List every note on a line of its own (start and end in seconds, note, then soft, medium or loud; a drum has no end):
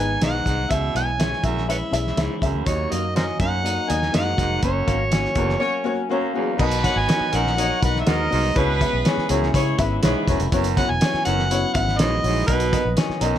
0.00 0.16 G#1 medium
0.00 0.69 D#3 medium
0.00 2.63 G#3 medium
0.00 0.11 B3 loud
0.00 0.68 B3 medium
0.00 0.11 D#4 medium
0.00 0.19 D#4 medium
0.00 0.68 D#4 medium
0.00 0.11 G#4 medium
0.00 0.11 B4 loud
0.00 0.21 G#5 loud
0.21 0.41 B1 medium
0.21 0.42 G#2 medium
0.21 0.35 B3 medium
0.21 0.35 D#4 medium
0.21 0.68 D#4 medium
0.21 0.35 G#4 medium
0.21 0.36 D#5 loud
0.21 0.73 F#5 loud
0.21 snare loud
0.21 closed hi-hat medium
0.45 0.65 C2 medium
0.45 0.66 G#2 medium
0.45 0.59 B3 medium
0.45 0.60 D#4 medium
0.45 0.60 G#4 medium
0.45 0.60 D#5 medium
0.45 kick medium
0.45 closed hi-hat medium
0.69 0.90 C#2 medium
0.69 1.06 B2 medium
0.69 2.65 E3 medium
0.69 0.84 C#4 medium
0.69 2.65 C#4 medium
0.69 0.84 E4 medium
0.69 2.65 E4 medium
0.69 0.84 G#4 medium
0.69 0.85 E5 loud
0.69 0.96 E5 medium
0.69 kick loud
0.69 closed hi-hat medium
0.93 1.33 B1 medium
0.93 1.10 B3 medium
0.93 1.08 C#4 medium
0.93 1.08 E4 medium
0.93 1.09 G#4 medium
0.93 1.09 E5 medium
0.93 1.47 G#5 loud
0.93 closed hi-hat medium
1.18 1.32 C#4 medium
1.18 1.66 C#4 medium
1.18 1.33 E4 medium
1.18 1.33 G#4 medium
1.18 1.33 E5 medium
1.18 snare loud
1.18 closed hi-hat medium
1.33 snare soft
1.42 1.82 A#1 medium
1.42 1.64 F#2 medium
1.42 1.57 C#4 medium
1.42 1.57 E4 medium
1.42 1.57 G#4 medium
1.42 1.58 E5 medium
1.42 1.69 E5 medium
1.42 kick medium
1.42 closed hi-hat medium
1.58 snare soft
1.67 1.81 C#4 medium
1.67 1.82 E4 medium
1.67 2.15 E4 medium
1.67 1.82 G#4 medium
1.67 1.76 B4 medium
1.67 1.77 C#5 medium
1.67 1.82 E5 medium
1.67 2.39 E5 medium
1.67 closed hi-hat medium
1.91 2.12 B1 medium
1.91 2.06 C#4 medium
1.91 2.06 E4 medium
1.91 2.06 G#4 medium
1.91 2.07 E5 loud
1.91 closed hi-hat medium
2.07 snare soft
2.16 2.27 C#2 medium
2.16 2.37 G#2 medium
2.16 2.31 C#4 medium
2.16 2.31 E4 medium
2.16 2.64 E4 medium
2.16 2.31 G#4 loud
2.16 2.32 E5 medium
2.16 snare loud
2.16 closed hi-hat medium
2.41 2.52 C#2 medium
2.41 2.62 F#2 medium
2.41 2.55 C#4 medium
2.41 2.55 E4 medium
2.41 2.56 G#4 medium
2.41 2.56 E5 loud
2.41 kick medium
2.41 closed hi-hat medium
2.54 2.64 D2 medium
2.66 3.01 D#2 medium
2.66 2.86 D#2 medium
2.66 4.61 F#3 medium
2.66 2.80 A#3 medium
2.66 4.61 A#3 medium
2.66 2.80 D#4 medium
2.66 4.61 D#4 medium
2.66 6.56 F#4 medium
2.66 2.80 F#4 medium
2.66 2.93 C#5 medium
2.66 2.81 D#5 loud
2.66 kick loud
2.66 closed hi-hat medium
2.90 3.30 F#2 medium
2.90 3.04 A#3 medium
2.90 3.06 A#3 medium
2.90 3.05 D#4 medium
2.90 3.05 F#4 medium
2.90 3.16 D#5 medium
2.90 3.05 D#5 medium
2.90 closed hi-hat medium
3.14 3.28 A#3 medium
3.14 3.62 C#4 medium
3.14 3.29 D#4 medium
3.14 3.29 F#4 medium
3.14 3.30 A#4 medium
3.14 3.25 A#4 medium
3.14 3.22 C5 medium
3.14 3.39 D#5 medium
3.14 snare loud
3.14 closed hi-hat medium
3.39 3.78 F#2 medium
3.39 3.60 F#2 medium
3.39 3.53 A#3 medium
3.39 3.53 D#4 medium
3.39 3.54 F#4 medium
3.39 3.54 D#5 medium
3.39 3.91 F#5 loud
3.39 kick loud
3.39 closed hi-hat medium
3.63 3.78 A#3 medium
3.63 3.78 D#4 medium
3.63 4.11 D#4 medium
3.63 3.79 F#4 medium
3.63 3.79 D#5 medium
3.63 closed hi-hat medium
3.88 4.09 D#2 medium
3.88 4.02 A#3 loud
3.88 4.03 D#4 loud
3.88 4.03 F#4 medium
3.88 4.03 D#5 loud
3.88 4.14 G#5 loud
3.88 closed hi-hat medium
4.02 snare soft
4.12 4.33 F#2 loud
4.12 4.34 G#2 medium
4.12 4.27 A#3 loud
4.12 4.27 D#4 medium
4.12 4.60 D#4 medium
4.12 4.27 F#4 loud
4.12 4.28 D#5 loud
4.12 4.60 F#5 loud
4.12 snare loud
4.12 closed hi-hat loud
4.37 4.57 F1 loud
4.37 4.59 G#2 medium
4.37 4.51 A#3 medium
4.37 4.52 D#4 medium
4.37 4.52 F#4 medium
4.37 4.52 D#5 medium
4.37 kick medium
4.37 closed hi-hat medium
4.62 4.82 F#1 loud
4.62 4.98 F#2 medium
4.62 6.58 F#3 medium
4.62 4.76 A#3 medium
4.62 6.58 A#3 medium
4.62 4.77 C#4 medium
4.62 6.58 C#4 medium
4.62 4.77 F#4 medium
4.62 6.07 C#5 medium
4.62 4.77 C#5 medium
4.62 kick loud
4.62 closed hi-hat medium
4.86 5.26 G#1 medium
4.86 5.01 A#3 medium
4.86 5.02 A#3 medium
4.86 5.01 C#4 medium
4.86 5.01 F#4 medium
4.86 5.02 C#5 medium
4.86 kick medium
4.86 closed hi-hat medium
5.10 5.25 A#3 medium
5.10 5.25 C#4 medium
5.10 5.59 C#4 medium
5.10 5.26 F#4 medium
5.10 5.26 C#5 medium
5.10 snare loud
5.10 closed hi-hat medium
5.25 snare soft
5.35 5.55 F#1 medium
5.35 5.57 E2 medium
5.35 5.50 A#3 medium
5.35 5.50 C#4 medium
5.35 5.50 F#4 medium
5.35 5.51 A#4 loud
5.35 kick medium
5.35 closed hi-hat medium
5.49 snare soft
5.59 5.74 A#3 medium
5.59 5.74 C#4 medium
5.59 6.08 C#4 medium
5.59 5.96 F#4 medium
5.59 5.75 F#4 medium
5.59 5.96 A#4 loud
5.59 5.96 C#5 loud
5.59 5.75 C#5 medium
5.84 5.99 A#3 loud
5.84 5.99 C#4 loud
5.84 5.99 F#4 loud
5.84 6.00 C#5 loud
6.09 6.30 F#2 medium
6.09 6.24 A#3 loud
6.09 6.57 A#3 medium
6.09 6.24 C#4 loud
6.09 6.24 F#4 loud
6.09 6.25 C#5 loud
6.33 6.55 E2 medium
6.33 6.48 A#3 medium
6.33 6.48 C#4 medium
6.33 6.48 F#4 medium
6.33 6.49 G#4 loud
6.58 6.88 B1 medium
6.58 6.94 B2 medium
6.58 8.54 F#3 medium
6.58 6.72 B3 loud
6.58 8.54 B3 medium
6.58 6.73 D#4 loud
6.58 7.29 D#4 loud
6.58 8.54 D#4 medium
6.58 7.29 F#4 loud
6.58 6.73 F#4 loud
6.58 6.73 A#4 loud
6.58 7.29 B4 loud
6.58 6.74 D#5 loud
6.58 kick loud
6.58 crash medium
6.71 closed hi-hat medium
6.83 6.97 B3 medium
6.83 6.98 B3 medium
6.83 6.97 D#4 medium
6.83 6.98 F#4 medium
6.83 6.98 A#4 medium
6.83 6.98 C#5 medium
6.83 6.99 F#5 loud
6.83 kick medium
6.83 closed hi-hat medium
6.96 7.06 G#1 loud
6.96 7.37 G#5 loud
7.07 7.22 B3 medium
7.07 7.54 C#4 medium
7.07 7.22 D#4 medium
7.07 7.22 F#4 medium
7.07 7.22 A#4 medium
7.07 7.23 D#5 medium
7.07 snare loud
7.07 closed hi-hat medium
7.21 muted fingered electric bass stroke soft
7.31 7.71 A#1 medium
7.31 7.53 F#2 medium
7.31 7.46 B3 medium
7.31 7.46 D#4 medium
7.31 7.52 D#4 medium
7.31 7.46 F#4 medium
7.31 7.53 F#4 medium
7.31 7.53 A#4 medium
7.31 7.47 A#4 medium
7.31 7.47 D#5 medium
7.31 closed hi-hat medium
7.36 7.84 F#5 loud
7.47 snare soft
7.56 7.71 B3 medium
7.56 7.71 D#4 medium
7.56 8.04 D#4 loud
7.56 7.71 F#4 medium
7.56 7.77 F#4 medium
7.56 7.71 A#4 medium
7.56 7.77 A#4 medium
7.56 7.78 C#5 loud
7.56 7.72 D#5 loud
7.56 closed hi-hat medium
7.81 8.01 B1 medium
7.81 7.95 B3 medium
7.81 7.96 D#4 medium
7.81 8.02 D#4 medium
7.81 7.96 F#4 medium
7.81 8.02 F#4 medium
7.81 7.96 A#4 medium
7.81 8.01 B4 medium
7.81 7.96 F#5 medium
7.81 8.00 F#5 medium
7.81 kick loud
7.81 closed hi-hat medium
7.96 snare soft
8.00 8.10 E5 medium
8.05 8.26 D#2 medium
8.05 8.27 G#2 medium
8.05 8.20 B3 medium
8.05 8.20 D#4 medium
8.05 8.53 D#4 medium
8.05 8.42 D#4 medium
8.05 8.20 F#4 medium
8.05 8.42 F#4 medium
8.05 8.20 A#4 medium
8.05 8.42 A#4 loud
8.05 8.59 D#5 loud
8.05 8.21 F#5 medium
8.05 snare loud
8.05 closed hi-hat medium
8.30 8.51 C2 loud
8.30 8.51 G#2 medium
8.30 8.44 B3 medium
8.30 8.44 D#4 medium
8.30 8.45 F#4 medium
8.30 8.45 A#4 medium
8.30 8.45 D#5 medium
8.30 open hi-hat soft
8.54 8.84 C#2 loud
8.54 8.91 B2 medium
8.54 10.50 G#3 medium
8.54 8.69 B3 medium
8.54 13.38 B3 medium
8.54 8.69 C#4 medium
8.54 12.44 C#4 medium
8.54 8.69 E4 loud
8.54 9.25 E4 medium
8.54 12.44 E4 medium
8.54 9.25 G#4 loud
8.54 8.69 G#4 medium
8.54 9.25 B4 loud
8.54 9.06 B4 medium
8.54 8.70 C#5 loud
8.54 kick loud
8.54 closed hi-hat medium
8.79 8.93 B3 medium
8.79 8.95 B3 medium
8.79 8.94 C#4 medium
8.79 8.94 E4 medium
8.79 8.94 G#4 medium
8.79 8.95 E5 medium
8.79 kick medium
8.79 closed hi-hat medium
8.93 9.03 B1 medium
9.04 9.18 B3 medium
9.04 9.18 C#4 medium
9.04 9.51 C#4 medium
9.04 9.19 E4 medium
9.04 9.19 G#4 medium
9.04 9.19 C#5 medium
9.04 snare loud
9.04 closed hi-hat medium
9.18 muted fingered electric bass stroke soft
9.18 snare soft
9.28 9.49 C#2 medium
9.28 9.50 F#2 medium
9.28 9.42 B3 medium
9.28 9.43 C#4 medium
9.28 9.49 C#4 medium
9.28 9.43 E4 medium
9.28 9.49 E4 medium
9.28 9.43 G#4 medium
9.28 9.49 G#4 loud
9.28 9.43 C#5 loud
9.28 closed hi-hat medium
9.43 snare soft
9.53 9.73 C#3 loud
9.53 9.67 B3 loud
9.53 9.67 C#4 loud
9.53 9.68 E4 loud
9.53 10.00 E4 medium
9.53 9.74 E4 medium
9.53 9.68 G#4 loud
9.53 9.74 G#4 loud
9.53 9.68 C#5 loud
9.53 9.74 C#5 loud
9.53 kick medium
9.53 closed hi-hat medium
9.78 9.98 G#1 medium
9.78 9.92 B3 medium
9.78 9.92 C#4 medium
9.78 9.92 E4 medium
9.78 9.99 E4 medium
9.78 9.92 G#4 medium
9.78 9.99 G#4 medium
9.78 9.98 B4 medium
9.78 9.92 E5 loud
9.78 kick loud
9.78 closed hi-hat medium
10.02 10.13 B1 medium
10.02 10.23 G#2 medium
10.02 10.16 B3 medium
10.02 10.16 C#4 medium
10.02 10.49 E4 medium
10.02 10.38 E4 medium
10.02 10.17 E4 medium
10.02 10.38 G#4 medium
10.02 10.17 G#4 medium
10.02 10.38 B4 medium
10.02 10.17 C#5 loud
10.02 snare loud
10.02 closed hi-hat medium
10.27 10.37 E1 loud
10.27 10.47 F#2 medium
10.27 10.41 B3 medium
10.27 10.41 C#4 medium
10.27 10.41 E4 medium
10.27 10.42 G#4 medium
10.27 10.42 C#5 loud
10.27 kick medium
10.27 closed hi-hat medium
10.40 10.50 F1 loud
10.40 closed hi-hat soft
10.52 10.80 F#1 loud
10.52 10.87 F#2 loud
10.52 13.38 F#3 medium
10.52 10.65 B3 loud
10.52 10.66 C#4 loud
10.52 10.66 E4 loud
10.52 10.66 F#4 loud
10.52 10.66 C#5 loud
10.52 kick loud
10.52 closed hi-hat medium
10.64 closed hi-hat medium
10.77 10.90 B3 medium
10.77 10.92 B3 medium
10.77 10.90 C#4 medium
10.77 10.90 E4 medium
10.77 10.91 F#4 medium
10.77 10.91 C#5 medium
10.77 10.92 F#5 loud
10.77 kick medium
10.77 closed hi-hat medium
10.90 10.99 E1 medium
10.90 11.24 G#5 loud
11.01 11.14 B3 medium
11.01 11.15 C#4 medium
11.01 11.47 C#4 medium
11.01 11.15 E4 medium
11.01 11.15 F#4 medium
11.01 11.15 C#5 medium
11.01 snare loud
11.01 closed hi-hat medium
11.14 muted fingered electric bass stroke medium
11.14 snare soft
11.25 11.64 F#1 medium
11.25 11.45 F#2 medium
11.25 11.39 B3 medium
11.25 11.39 C#4 medium
11.25 11.39 E4 medium
11.25 11.39 F#4 medium
11.25 11.40 C#5 medium
11.25 11.71 F#5 loud
11.25 closed hi-hat medium
11.39 snare soft
11.50 11.63 B3 medium
11.50 11.64 C#4 medium
11.50 11.64 E4 medium
11.50 11.97 E4 medium
11.50 11.64 F#4 medium
11.50 11.64 C#5 loud
11.50 closed hi-hat medium
11.74 12.00 G#1 medium
11.74 11.88 B3 medium
11.74 11.88 C#4 medium
11.74 11.88 E4 medium
11.74 11.88 F#4 medium
11.74 11.89 E5 loud
11.74 11.99 F#5 loud
11.74 kick medium
11.74 closed hi-hat medium
11.88 snare soft
11.98 12.18 A#1 medium
11.98 12.19 G#2 medium
11.98 12.12 B3 medium
11.98 12.12 C#4 medium
11.98 12.13 E4 medium
11.98 12.46 E4 medium
11.98 12.13 F#4 medium
11.98 12.13 C#5 medium
11.98 12.46 D#5 loud
11.98 snare loud
11.98 closed hi-hat loud
12.23 12.43 A#1 loud
12.23 12.43 G#2 medium
12.23 12.37 B3 medium
12.23 12.37 C#4 medium
12.23 12.37 E4 medium
12.23 12.37 F#4 medium
12.23 12.38 C#5 medium
12.23 open hi-hat medium
12.47 12.76 B1 loud
12.47 12.82 B2 medium
12.47 12.61 B3 medium
12.47 12.61 D#4 medium
12.47 12.62 F#4 loud
12.47 12.62 A#4 medium
12.47 12.93 B4 medium
12.47 13.38 D#5 medium
12.47 12.62 D#5 loud
12.47 kick loud
12.47 closed hi-hat medium
12.60 closed hi-hat medium
12.71 12.85 B3 medium
12.71 12.87 B3 medium
12.71 12.86 D#4 medium
12.71 12.86 F#4 medium
12.71 12.86 A#4 medium
12.71 12.86 D#5 medium
12.71 kick medium
12.71 closed hi-hat medium
12.85 12.94 A#1 medium
12.96 13.10 B3 medium
12.96 13.38 C#4 medium
12.96 13.10 D#4 medium
12.96 13.10 F#4 medium
12.96 13.11 A#4 medium
12.96 13.11 D#5 medium
12.96 snare loud
12.96 closed hi-hat medium
13.10 muted fingered electric bass stroke soft
13.10 snare soft
13.20 13.38 B1 medium
13.20 13.38 F#2 medium
13.20 13.34 B3 medium
13.20 13.34 D#4 medium
13.20 13.35 F#4 medium
13.20 13.35 A#4 medium
13.20 13.35 D#5 loud
13.20 closed hi-hat medium
13.35 snare soft